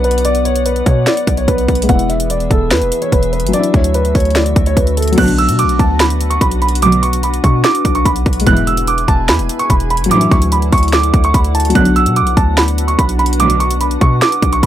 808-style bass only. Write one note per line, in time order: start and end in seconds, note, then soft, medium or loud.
0.00 0.82 B1 loud
0.86 1.06 B2 loud
1.27 1.47 B1 loud
1.48 1.68 B1 loud
1.68 1.88 B1 loud
1.89 2.48 E1 loud
2.51 2.73 E1 loud
2.71 2.83 E2 loud
2.81 2.91 E1 loud
3.12 3.45 E1 loud
3.43 3.53 G#1 loud
3.74 4.13 D2 loud
4.15 4.54 D2 loud
4.56 4.76 D2 loud
4.77 5.16 D2 loud
5.18 5.50 B1 loud
5.49 5.66 B2 loud
5.64 5.79 B1 loud
5.79 6.39 D2 loud
6.41 7.40 B1 loud
7.44 7.64 B2 loud
7.85 8.05 B1 loud
8.05 8.25 B1 loud
8.26 8.46 B1 loud
8.47 9.06 E1 loud
9.08 9.30 E1 loud
9.29 9.41 E2 loud
9.39 9.49 E1 loud
9.70 10.02 E1 loud
10.01 10.10 G#1 loud
10.31 10.71 D2 loud
10.73 11.12 D2 loud
11.14 11.33 D2 loud
11.34 11.74 D2 loud
11.75 12.08 B1 loud
12.06 12.23 B2 loud
12.22 12.36 B1 loud
12.37 12.96 D2 loud
12.99 13.97 B1 loud
14.01 14.21 B2 loud
14.42 14.62 B1 loud
14.63 14.66 B1 loud